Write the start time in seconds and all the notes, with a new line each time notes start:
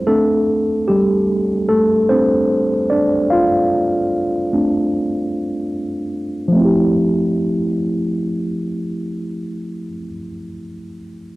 0.07 A3 C4 D4 A4
0.88 G3 G4
1.69 A3 A4
2.09 A3 C4 D4 C5
2.90 D4 D5
3.30 F4 F5
4.53 A3 C4 D4
6.48 F3
6.52 A3
6.57 C4
6.61 E4
6.65 G4